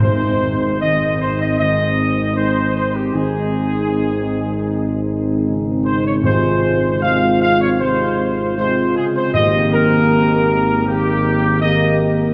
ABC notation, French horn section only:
X:1
M:4/4
L:1/8
Q:1/4=78
K:Ab
V:1 name="French horn section"
[CE]2 [CE]2 [CE]2 [CE]2 | [CE]8 | [CF]2 [CF]2 [CF]2 [CF]2 | [B,G]4 [B,G]2 [B,G]2 |]